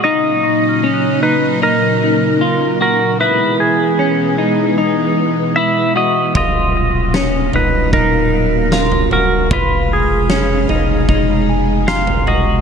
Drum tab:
SD |----------------|----------------|----o-------o---|----o-------o---|
FT |----------------|----------------|o-----o------oo-|o-----o------oo-|
BD |----------------|----------------|o-------o-------|o-------o-------|